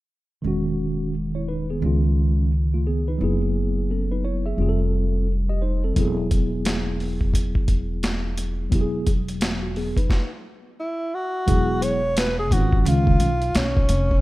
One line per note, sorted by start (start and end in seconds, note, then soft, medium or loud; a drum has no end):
0.42 1.78 E1 medium
0.42 1.78 D#3 medium
0.42 1.79 G#3 medium
0.42 1.13 C#4 medium
0.48 1.14 F#4 medium
1.35 1.48 E4 soft
1.35 1.47 C#5 soft
1.48 1.69 D#4 soft
1.48 1.69 B4 medium
1.70 2.03 B3 soft
1.70 2.03 G#4 medium
1.80 3.16 C#2 medium
1.80 3.16 D#3 medium
1.80 2.50 G#3 medium
1.80 2.51 C#4 medium
1.85 2.52 F4 medium
2.74 2.86 A3 soft
2.74 2.86 F4 medium
2.87 3.07 B3 medium
2.87 3.07 G#4 medium
3.08 3.41 D#4 medium
3.08 3.40 B4 medium
3.18 4.54 F#1 medium
3.18 4.55 F#3 medium
3.18 4.56 B3 medium
3.18 3.89 E4 medium
3.24 3.90 G#4 medium
3.91 4.11 C#4 soft
3.91 4.11 A4 soft
4.12 4.24 D#4 medium
4.12 4.24 B4 medium
4.25 4.45 E4 soft
4.25 4.45 C#5 medium
4.46 4.61 G#4 soft
4.46 4.78 E5 medium
4.57 5.92 F1 medium
4.57 5.93 G3 medium
4.57 5.26 C4 medium
4.57 5.27 F4 medium
4.62 4.68 G#4 medium
4.69 5.31 A4 medium
5.49 5.62 G4 soft
5.49 5.61 D#5 medium
5.62 5.83 D#4 medium
5.62 5.82 C5 medium
5.84 6.17 C4 soft
5.84 6.16 A4 medium
5.94 8.68 E1 medium
5.94 8.67 F#3 medium
5.94 8.68 B3 medium
5.94 8.69 E4 medium
5.94 kick medium
5.94 closed hi-hat medium
6.00 8.70 G#4 medium
6.31 kick medium
6.31 closed hi-hat medium
6.65 snare medium
6.65 closed hi-hat medium
7.00 open hi-hat soft
7.21 kick medium
7.34 kick medium
7.34 closed hi-hat medium
7.55 kick medium
7.68 kick medium
7.68 closed hi-hat medium
8.03 snare medium
8.03 closed hi-hat medium
8.38 closed hi-hat medium
8.70 10.06 E1 medium
8.70 10.06 F#3 medium
8.70 9.05 B3 medium
8.70 9.06 E4 medium
8.70 kick medium
8.70 closed hi-hat medium
8.75 8.82 G4 medium
8.81 9.11 G#4 medium
9.07 kick medium
9.07 closed hi-hat medium
9.28 closed hi-hat soft
9.41 snare medium
9.41 closed hi-hat medium
9.63 9.75 F#4 medium
9.76 9.97 B3 medium
9.76 9.97 G#4 medium
9.76 open hi-hat soft
9.97 10.30 D#4 soft
9.97 10.30 B4 medium
9.97 kick medium
9.97 closed hi-hat soft
10.10 kick medium
10.10 snare medium
10.80 11.16 E4 medium
11.14 11.85 F#4 loud
11.47 12.51 E1 medium
11.47 11.99 F#3 medium
11.47 11.99 B3 medium
11.47 12.00 E4 medium
11.47 12.00 G#4 medium
11.47 kick medium
11.47 closed hi-hat medium
11.82 12.20 C#5 medium
11.82 closed hi-hat medium
12.17 12.38 B4 medium
12.17 snare medium
12.17 closed hi-hat loud
12.39 12.54 G#4 medium
12.51 12.82 G#1 medium
12.51 12.84 D#3 medium
12.51 12.85 G#3 soft
12.51 12.86 C#4 medium
12.51 12.61 E4 soft
12.51 12.81 F#4 medium
12.51 kick medium
12.51 closed hi-hat medium
12.60 12.87 F4 medium
12.73 kick medium
12.81 12.89 F#4 medium
12.85 13.17 C#2 medium
12.85 13.29 D#3 medium
12.85 13.29 G#3 soft
12.85 13.30 C#4 medium
12.85 13.58 F4 medium
12.85 13.30 F4 medium
12.85 closed hi-hat medium
13.07 kick loud
13.20 13.51 B1 medium
13.20 closed hi-hat medium
13.42 closed hi-hat soft
13.55 13.86 B1 medium
13.55 14.21 C#4 medium
13.55 snare medium
13.55 closed hi-hat medium
13.77 kick medium
13.89 14.20 F1 medium
13.89 closed hi-hat medium
14.11 kick medium